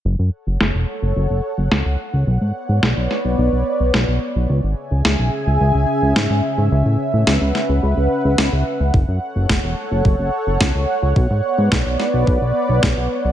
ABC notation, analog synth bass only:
X:1
M:4/4
L:1/16
Q:1/4=108
K:F#m
V:1 name="Analog synth bass" clef=bass
F,,, F,, z F,,, F,,, E,,, z F,,, F,,, F,,, z F,,, C,, C,, z C,, | B,,, G,, z G,, B,,, B,,, z B,,, B,,, B,,, z B,,, B,,, B,,, z B,,, | C,, G,,, z C,, C,, B,,, z C,, C,, C,, z C,, G,, G,, z G,, | C,, A,, z A,, C,, C,, z C,, C,, C,, z C,, C,, C,, z C,, |
F,,, F,, z F,,, F,,, E,,, z F,,, F,,, F,,, z F,,, C,, C,, z C,, | B,,, G,, z G,, B,,, B,,, z B,,, B,,, B,,, z B,,, B,,, B,,, z B,,, |]